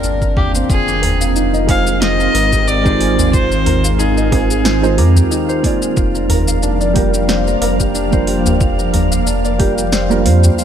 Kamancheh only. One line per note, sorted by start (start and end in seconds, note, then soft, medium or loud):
0.00 0.33 A#4 loud
0.37 0.51 G4 loud
0.70 1.31 G#4 loud
1.69 1.99 F5 loud
2.02 2.69 D#5 loud
2.68 3.33 D5 loud
3.33 4.00 C5 loud
3.99 5.31 G#4 medium